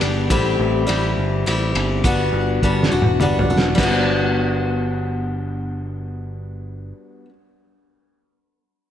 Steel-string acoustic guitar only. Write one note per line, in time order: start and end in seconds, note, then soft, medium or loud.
0.01 0.29 G3 soft
0.01 0.30 B3 soft
0.01 0.30 D4 soft
0.01 0.30 G4 soft
0.30 0.88 A2 medium
0.30 0.86 G3 medium
0.30 0.86 C4 medium
0.30 0.88 E4 medium
0.30 0.89 G4 medium
0.87 1.46 G3 medium
0.87 1.46 C4 medium
0.87 1.47 E4 medium
0.87 1.48 G4 medium
1.46 2.04 G3 medium
1.46 2.05 C4 medium
1.46 2.05 E4 medium
1.46 2.06 G4 medium
2.05 2.62 G3 medium
2.05 2.62 B3 medium
2.05 2.63 D4 medium
2.05 2.64 F#4 medium
2.63 2.92 G3 medium
2.63 2.91 B3 medium
2.63 2.91 D4 medium
2.63 2.90 F#4 medium
2.92 3.21 B3 soft
2.92 3.20 D4 soft
2.92 3.21 F#4 medium
3.21 3.50 G3 medium
3.21 3.50 B3 medium
3.21 3.49 D4 medium
3.21 3.49 F#4 medium
3.50 3.78 B3 soft
3.50 3.79 D4 soft
3.50 3.79 F#4 soft
3.75 7.25 G3 medium
3.75 7.29 B3 medium
3.80 7.30 D4 medium
3.80 7.33 F#4 medium